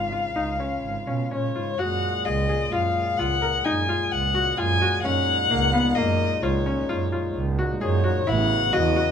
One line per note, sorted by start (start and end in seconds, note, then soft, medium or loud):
0.00 0.25 G#1 medium
0.00 1.75 C#3 medium
0.00 1.75 G#3 soft
0.00 1.75 F4 medium
0.00 1.31 F5 medium
0.12 0.28 F4 soft
0.35 0.73 C#2 medium
0.35 0.52 D#4 medium
0.60 0.92 C#4 medium
0.84 1.02 G#1 medium
1.07 1.29 B2 medium
1.07 1.23 C#4 medium
1.31 1.53 A#2 medium
1.31 1.47 C#4 medium
1.31 1.79 C#5 medium
1.55 1.77 G#2 medium
1.55 1.71 F4 medium
1.78 2.16 F#2 medium
1.78 8.23 A#2 medium
1.78 8.23 G#3 medium
1.78 2.11 F#4 medium
1.78 5.02 G#4 medium
1.78 2.26 F#5 medium
2.25 2.63 C#2 medium
2.25 2.42 G#4 medium
2.25 2.74 D#5 medium
2.49 2.65 G#4 medium
2.72 3.09 F#2 medium
2.72 3.04 F4 medium
2.72 3.19 F5 medium
3.17 3.56 C#2 medium
3.17 3.35 F4 medium
3.17 3.66 F#5 medium
3.42 3.58 A#4 medium
3.64 4.03 F#2 medium
3.64 3.81 D#4 medium
3.64 4.13 G#5 medium
3.89 4.20 F4 medium
4.12 4.48 C#2 medium
4.12 4.59 F#5 medium
4.34 4.50 F#4 medium
4.57 4.94 F#2 loud
4.57 4.74 F4 medium
4.57 5.02 G#5 medium
4.82 4.97 F#4 medium
5.03 5.41 F#2 medium
5.03 5.36 C#4 medium
5.03 8.23 D#4 medium
5.03 5.97 F#5 loud
5.51 5.87 C#2 medium
5.51 5.66 A#3 medium
5.73 5.89 B3 medium
5.95 6.33 F#2 medium
5.95 6.28 A#3 medium
5.95 6.44 D#5 medium
6.43 6.79 C#2 medium
6.43 6.59 F4 medium
6.43 7.35 C#5 medium
6.66 6.82 C#4 medium
6.89 7.25 F#2 medium
6.89 7.05 F4 medium
7.12 7.43 F4 medium
7.35 7.71 C#2 medium
7.59 7.74 F#4 medium
7.81 8.17 F#2 loud
7.81 7.97 G#4 medium
7.81 8.29 C#5 medium
8.04 8.19 F#4 medium
8.27 8.63 A1 medium
8.27 9.11 C#3 medium
8.27 9.11 B3 medium
8.27 8.58 E4 loud
8.27 9.11 F#4 medium
8.27 8.75 F#5 medium
8.73 9.09 E2 loud
8.73 8.89 F#4 medium
8.73 9.11 D#5 loud
8.96 9.11 F#4 medium